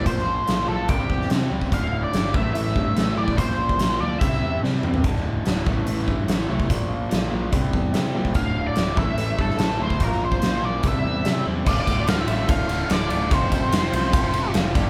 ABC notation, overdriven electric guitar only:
X:1
M:4/4
L:1/8
Q:1/4=145
K:Dm
V:1 name="Overdriven electric guitar" clef=bass
[B,,F,B,]2 [B,,F,B,] [B,,F,B,] [C,G,C]2 [C,G,C] [C,G,C] | [D,,A,,D,]2 [D,,A,,D,] [A,,E,A,] [A,,E,A,]2 [A,,E,A,] [A,,E,A,] | [B,,F,B,]2 [B,,F,B,] [B,,F,B,] [C,G,C]2 [C,G,C] [C,G,C] | [D,,A,,D,]2 [D,,A,,D,] [A,,E,A,] [A,,E,A,]2 [A,,E,A,] [A,,E,A,] |
[B,,F,B,]2 [B,,F,B,] [B,,F,B,] [C,G,C]2 [C,G,C] [C,G,C] | [D,,A,,D,]2 [D,,A,,D,] [A,,E,A,] [A,,E,A,]2 [A,,E,A,] [A,,E,A,] | [B,,F,B,]2 [B,,F,B,] [B,,F,B,] [C,G,C]2 [C,G,C] [C,G,C] | [D,,A,,D,A,F] [D,A,F] [A,,D,A,F] [D,,A,,D,A,F] [A,,D,A,F] [D,,A,,D,A,F] [A,,D,A,F] [D,A,F] |
[F,,C,F,A,CF] [F,A,CF] [F,A,CF] [F,,C,F,A,CF] [F,A,CF] [F,,C,F,A,CF] [F,A,CF] [G,,D,G,B,DG] |]